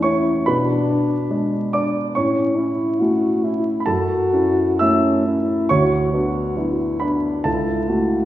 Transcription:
Already playing: grand piano E2 A3 C#4 E4 E5 E6
0.02 grand piano C#4 E4 C#5 C#6, french horn E4
0.46 grand piano B2 B4 B5, french horn D4
0.90 grand piano D4
1.30 grand piano G#3 D4
1.73 grand piano D4 D5 D6
2.15 grand piano A2 C#5 C#6, french horn C#4
2.57 grand piano C#4 E4, french horn E4
3.00 grand piano A3 C#4 E4, french horn F#4
3.44 grand piano C#4 E4, french horn E4
3.80 grand piano B5
3.86 grand piano F#2 A4 A5, french horn F#4
4.33 grand piano C#4 E4
4.79 grand piano A3 C#4 E4 E5 E6, french horn C#4
5.26 grand piano C#4 E4, french horn E4
5.69 grand piano D2 C#5 C#6, french horn F#4
6.13 grand piano B3 D4, french horn F#4
6.56 grand piano F#3 B3 D4, french horn E4
7.00 grand piano B3 D4 B4 B5, french horn D4
7.44 grand piano C#2 A4 A5, french horn E4
7.89 grand piano A3 E4, french horn F#4

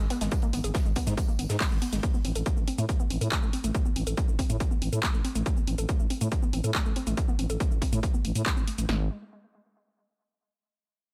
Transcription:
0.10 synth arpeggio sound B3, open hi-hat, tambourine
0.21 fm bass G#1, synth arpeggio sound G#3, snare, closed hi-hat, shaker
0.31 synth arpeggio sound G#3, kick, closed hi-hat, tambourine, shaker
0.42 synth arpeggio sound A#3, closed hi-hat, shaker
0.53 fm bass G#1, synth arpeggio sound B3, open hi-hat, tambourine
0.64 fm bass G#1, synth arpeggio sound G#4, closed hi-hat, shaker
0.74 synth arpeggio sound G#3, kick, snare, closed hi-hat, tambourine, shaker
0.85 fm bass G#1, synth arpeggio sound G#3, shaker
0.95 synth arpeggio sound B3, kick, open hi-hat, tambourine
1.07 fm bass G#2, synth arpeggio sound G#3, snare, closed hi-hat, shaker
1.17 synth arpeggio sound G#3, kick, closed hi-hat, tambourine, shaker
1.28 synth arpeggio sound A#3, shaker
1.39 fm bass G#1, synth arpeggio sound B3, open hi-hat, tambourine
1.49 fm bass G#2, synth arpeggio sound G#4, snare, closed hi-hat, shaker
1.60 synth arpeggio sound G#3, kick, snare, clap, closed hi-hat, open hi-hat, shaker
1.71 fm bass G#1, synth arpeggio sound G#3, shaker
1.82 synth arpeggio sound B3, open hi-hat, tambourine
1.92 fm bass G#1, synth arpeggio sound G#3, snare, closed hi-hat, shaker
2.03 synth arpeggio sound A3, kick, closed hi-hat, shaker
2.14 synth arpeggio sound B3, shaker
2.24 fm bass A1, synth arpeggio sound C4, open hi-hat
2.35 fm bass A1, synth arpeggio sound A4, closed hi-hat, shaker
2.46 synth arpeggio sound A3, kick, closed hi-hat, shaker
2.57 fm bass A1, synth arpeggio sound A3, shaker
2.67 synth arpeggio sound C4, open hi-hat
2.78 fm bass A2, synth arpeggio sound A3, closed hi-hat, shaker
2.89 synth arpeggio sound A3, kick, closed hi-hat, shaker
3.00 synth arpeggio sound B3, shaker
3.10 fm bass A1, synth arpeggio sound C4, open hi-hat
3.21 fm bass A2, synth arpeggio sound A4, closed hi-hat, shaker
3.32 synth arpeggio sound A3, kick, clap, closed hi-hat, shaker
3.42 fm bass A1, synth arpeggio sound A3, shaker
3.53 synth arpeggio sound C4, open hi-hat
3.64 fm bass A1, synth arpeggio sound A3, closed hi-hat, shaker
3.75 kick, closed hi-hat, shaker
3.85 synth arpeggio sound B3, shaker
3.96 fm bass A1, synth arpeggio sound C4, open hi-hat
4.07 fm bass A1, synth arpeggio sound A4, closed hi-hat, shaker
4.17 synth arpeggio sound A3, kick, closed hi-hat, shaker
4.28 fm bass A1, synth arpeggio sound A3, shaker
4.39 synth arpeggio sound C4, kick, open hi-hat
4.50 fm bass A2, synth arpeggio sound A3, closed hi-hat, shaker
4.60 synth arpeggio sound A3, kick, closed hi-hat, shaker
4.71 synth arpeggio sound B3, shaker
4.82 fm bass A1, synth arpeggio sound C4, open hi-hat
4.92 fm bass A2, synth arpeggio sound A4, closed hi-hat, shaker
5.03 synth arpeggio sound A3, kick, clap, closed hi-hat, shaker
5.14 fm bass A1, synth arpeggio sound A3, shaker
5.24 synth arpeggio sound C4, open hi-hat
5.35 fm bass A1, synth arpeggio sound A3, closed hi-hat, shaker
5.46 synth arpeggio sound A3, kick, closed hi-hat, shaker
5.57 synth arpeggio sound B3, shaker
5.67 fm bass A1, synth arpeggio sound C4, open hi-hat
5.78 fm bass A1, synth arpeggio sound A4, closed hi-hat, shaker
5.89 synth arpeggio sound A3, kick, closed hi-hat, shaker
6.00 fm bass A1, synth arpeggio sound A3, shaker
6.10 synth arpeggio sound C4, open hi-hat
6.21 fm bass A2, synth arpeggio sound A3, closed hi-hat, shaker
6.32 kick, closed hi-hat, shaker
6.43 synth arpeggio sound B3, shaker
6.53 fm bass A1, synth arpeggio sound C4, open hi-hat
6.64 fm bass A2, synth arpeggio sound A4, closed hi-hat, shaker
6.75 synth arpeggio sound A3, kick, clap, closed hi-hat, shaker
6.85 fm bass A1, synth arpeggio sound A3, shaker
6.96 synth arpeggio sound C4, open hi-hat
7.07 fm bass A1, synth arpeggio sound A3, closed hi-hat, shaker
7.17 synth arpeggio sound A3, kick, closed hi-hat, shaker
7.28 synth arpeggio sound B3, shaker
7.39 fm bass A1, synth arpeggio sound C4, open hi-hat
7.49 fm bass A1, synth arpeggio sound A4, closed hi-hat, shaker
7.60 synth arpeggio sound A3, kick, closed hi-hat, shaker
7.71 fm bass A1, synth arpeggio sound A3, shaker
7.82 synth arpeggio sound C4, kick, open hi-hat
7.92 fm bass A2, synth arpeggio sound A3, closed hi-hat, shaker
8.03 synth arpeggio sound A3, kick, closed hi-hat, shaker
8.14 synth arpeggio sound B3, shaker
8.24 fm bass A1, synth arpeggio sound A3, open hi-hat
8.35 fm bass A2, synth arpeggio sound A3, closed hi-hat, shaker
8.46 synth arpeggio sound A3, kick, clap, closed hi-hat, shaker
8.57 fm bass A1, synth arpeggio sound C4, shaker
8.67 synth arpeggio sound A3, open hi-hat
8.78 fm bass A1, synth arpeggio sound A3, closed hi-hat, shaker
8.89 fm bass G#1, synth arpeggio sound G#3, snare

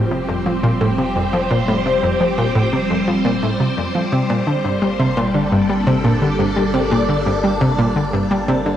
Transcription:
Already playing: analog synth bass F1, string machine F3 G3 C4 G4 C5
0.11 synth arpeggio sound C3
0.29 synth arpeggio sound F2
0.46 synth arpeggio sound F3
0.63 synth arpeggio sound A#2
0.81 synth arpeggio sound A2
0.98 synth arpeggio sound C3
1.16 synth arpeggio sound F2
1.33 synth arpeggio sound F3
1.51 synth arpeggio sound A#2
1.68 synth arpeggio sound A2
1.86 synth arpeggio sound C3
2.03 synth arpeggio sound F2
2.20 synth arpeggio sound F3
2.38 synth arpeggio sound A#2
2.55 synth arpeggio sound A2
2.73 synth arpeggio sound C3
2.90 synth arpeggio sound F2
3.08 synth arpeggio sound F3
3.25 synth arpeggio sound A#2
3.42 synth arpeggio sound A2
3.60 synth arpeggio sound C3
3.77 synth arpeggio sound F2
3.95 synth arpeggio sound F3
4.12 analog synth bass G1, synth arpeggio sound C3
4.30 synth arpeggio sound A#2
4.47 synth arpeggio sound D3
4.63 synth arpeggio sound G2, string machine A#3 A4
4.82 synth arpeggio sound G3
4.99 synth arpeggio sound C3
5.09 string machine D4
5.17 synth arpeggio sound A#2
5.35 synth arpeggio sound D3
5.52 synth arpeggio sound G2
5.63 string machine D5
5.69 synth arpeggio sound G3
5.87 synth arpeggio sound C3
6.04 synth arpeggio sound A#2
6.22 synth arpeggio sound D3
6.39 synth arpeggio sound G2
6.56 synth arpeggio sound G3
6.74 synth arpeggio sound C3
6.91 synth arpeggio sound A#2
7.09 synth arpeggio sound D3
7.26 synth arpeggio sound G2
7.44 synth arpeggio sound G3
7.61 synth arpeggio sound C3
7.79 synth arpeggio sound A#2
7.96 synth arpeggio sound D3
8.13 synth arpeggio sound G2
8.31 synth arpeggio sound G3
8.48 synth arpeggio sound C3
8.66 synth arpeggio sound D3

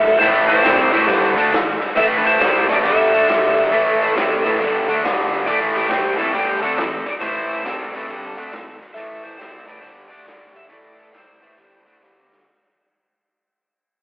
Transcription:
Already playing: lead electric guitar A4, electric slide guitar E5
0.07 ride
0.19 distorted electric guitar A2 E3 A3, lead electric guitar E4, electric slide guitar C5, kick, ride
0.23 fingered electric bass A1
0.49 lead electric guitar E4, electric slide guitar C5, ride
0.64 fingered electric bass C2, distorted electric guitar C3 G3 C4, snare, ride
0.92 fingered electric bass A1, distorted electric guitar A2 E3 A3, kick, ride
1.07 fingered electric bass G1, distorted electric guitar G2 D3 G3, kick, ride
1.36 fingered electric bass D2, distorted electric guitar D3 A3 D4, ride
1.53 fingered electric bass A1, distorted electric guitar A2 E3, snare, ride
1.82 ride
1.95 fingered electric bass A1, distorted electric guitar A2 E3 A3, lead electric guitar A4, electric slide guitar E5, kick, ride
2.18 lead electric guitar D4, electric slide guitar B4
2.26 lead electric guitar E4, electric slide guitar C5, ride
2.40 fingered electric bass C2, distorted electric guitar C3 G3 C4, snare, ride
2.68 fingered electric bass A1, distorted electric guitar A2 E3 A3, lead electric guitar D#4, electric slide guitar D5, kick, ride
2.83 fingered electric bass G1, distorted electric guitar G2 D3 G3, lead electric guitar A4, kick, ride
2.87 electric slide guitar E5
3.13 fingered electric bass D2, distorted electric guitar D3 A3 D4, ride
3.28 fingered electric bass G1, distorted electric guitar G2 D3 G3, snare, ride
3.58 ride
3.71 fingered electric bass A1, distorted electric guitar A2 E3 A3, kick, ride
4.02 ride
4.15 fingered electric bass C2, distorted electric guitar C3 G3 C4, snare, ride
4.44 fingered electric bass A1, distorted electric guitar A2 E3 A3, kick, snare, ride
4.59 fingered electric bass G1, distorted electric guitar G2 D3 G3, kick, ride
4.88 fingered electric bass D2, distorted electric guitar D3 A3 D4, ride
5.03 fingered electric bass G1, distorted electric guitar G2 D3 G3, snare, ride
5.19 snare
5.34 ride
5.46 fingered electric bass A1, distorted electric guitar A2 E3 A3, lead electric guitar A4, electric slide guitar D5, kick, ride
5.76 lead electric guitar A3, electric slide guitar G4, ride
5.89 fingered electric bass C2, distorted electric guitar C3 G3 C4, snare, ride
6.18 fingered electric bass A1, distorted electric guitar A2 E3 A3, electric slide guitar A4, kick, ride
6.22 lead electric guitar C4
6.33 fingered electric bass G1, distorted electric guitar G2 D3 G3, lead electric guitar A3, electric slide guitar G4, kick, ride
6.62 fingered electric bass D2, distorted electric guitar D3 A3 D4, lead electric guitar C4, electric slide guitar A4, ride
6.77 fingered electric bass A1, distorted electric guitar A2 E3, snare, ride
7.06 lead electric guitar D#4, electric slide guitar D5, ride
7.20 fingered electric bass A1, distorted electric guitar A2 E3 A3, lead electric guitar E4, electric slide guitar C5, kick, ride
7.51 ride
7.64 fingered electric bass C2, distorted electric guitar C3 G3 C4, lead electric guitar C4, electric slide guitar A4, snare, ride
7.94 fingered electric bass A1, distorted electric guitar A2 E3 A3, kick, ride
8.08 fingered electric bass G1, distorted electric guitar G2 D3 G3, kick, ride
8.37 fingered electric bass D2, distorted electric guitar D3 A3 D4, ride
8.52 fingered electric bass A1, distorted electric guitar A2 E3, snare, ride
8.69 snare
8.82 ride
8.94 fingered electric bass A1, distorted electric guitar A2 E3 A3, lead electric guitar A4, electric slide guitar E5, kick, ride
9.23 lead electric guitar E4, electric slide guitar C5, ride
9.39 fingered electric bass C2, distorted electric guitar C3 G3 C4, snare, ride
9.66 fingered electric bass A1, distorted electric guitar A2 E3 A3, lead electric guitar D#4, electric slide guitar D5, kick, ride
9.81 fingered electric bass G1, distorted electric guitar G2 D3 G3, lead electric guitar E4, electric slide guitar C5, kick, ride
10.09 fingered electric bass D2, distorted electric guitar D3 A3 D4, lead electric guitar G4, electric slide guitar D5, ride
10.26 fingered electric bass G1, distorted electric guitar G2 D3 G3, snare, ride
10.56 lead electric guitar G4, electric slide guitar E5, ride
10.69 fingered electric bass A1, distorted electric guitar A2 E3 A3, lead electric guitar A4, kick, ride
10.73 electric slide guitar D5
10.99 ride
11.13 fingered electric bass C2, distorted electric guitar C3 G3 C4, lead electric guitar E4, snare, ride
11.17 electric slide guitar C5
11.41 fingered electric bass A1, distorted electric guitar A2 E3 A3, kick, snare, ride
11.58 fingered electric bass G1, distorted electric guitar G2 D3 G3, kick, ride
11.85 fingered electric bass D2, distorted electric guitar D3 A3 D4, ride
12.00 fingered electric bass G1, distorted electric guitar G2 D3 G3, snare
12.32 snare
12.39 snare

